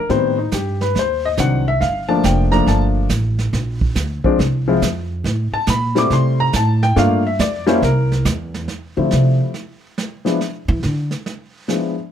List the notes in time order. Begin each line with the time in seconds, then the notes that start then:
0.09 A2 D#3 G3 B3 C4 C5, brush sweep, kick, snare
0.38 D#4
0.52 G2 G4, kick, snare, hi-hat pedal
0.81 B4, snare
0.95 D#2, brush sweep, kick, snare
0.99 C5
1.25 D#5
1.37 C2 D#3 F#3 C4 D4 F#5, kick, snare, hi-hat pedal
1.68 E5
1.81 G1 F5, brush sweep, kick, snare
2.09 F3 A3 A#3 D4 A5
2.24 F1 G5, kick, snare, hi-hat pedal
2.51 F3 A3 A#3 D4 A#5, snare
2.66 G1 A5, brush sweep, kick, snare
3.09 A1, kick, snare, hi-hat pedal
3.39 snare
3.53 A#1, brush sweep, kick, snare
3.81 kick
3.95 D2, kick, snare, hi-hat pedal
4.24 F3 G#3 C4 D4, muted upright bass stroke, kick
4.39 C2, brush sweep, kick, snare
4.68 F3 G#3 C4 E4
4.82 F2, kick, snare, hi-hat pedal
5.24 A2, brush sweep, kick, snare
5.52 A5, muted upright bass stroke
5.67 A#2 B5, kick, snare, hi-hat pedal
5.95 G3 A3 C4 E4 D6, snare
6.10 C3 C6, brush sweep, kick, snare
6.40 A#5
6.53 A2 A5, kick, snare, hi-hat pedal
6.83 G5, snare
6.96 G2 A3 A#3 D4 F4 F5, brush sweep, kick, snare
7.27 E5
7.39 F2 D5, kick, snare, hi-hat pedal
7.67 G3 A#3 C#4 E4 C5, snare
7.82 C2 A#4, brush sweep, kick, snare
8.12 snare
8.25 E2, kick, snare, hi-hat pedal
8.54 snare
8.68 brush sweep, snare
8.97 D3 F3 G3 A3 C4 E4
9.11 C3, snare
9.54 brush sweep, snare
9.98 snare
10.25 F3 G#3 B3 D4 E4, snare
10.41 brush sweep, snare
10.68 E3
10.83 D3, snare
11.11 snare
11.26 brush sweep, snare
11.68 F3 G#3 B3 D4 E4, snare